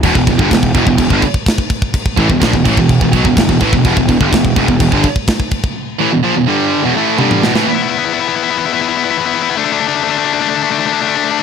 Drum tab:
CC |x-x-x-x-x-x-x-x-|x-x-x-x-x-x-x-x-|x-x-x-x-x-x-x-x-|----------------|
SD |----o-------o---|----o-------o---|----o-------o---|--------------oo|
T1 |----------------|----------------|----------------|------------o---|
T2 |----------------|----------------|----------------|-------------o--|
BD |oooooooooooooooo|oooooooooooooooo|oooooooooooooooo|----------------|

CC |----------------|----------------|
SD |----------------|----------------|
T1 |----------------|----------------|
T2 |----------------|----------------|
BD |----------------|----------------|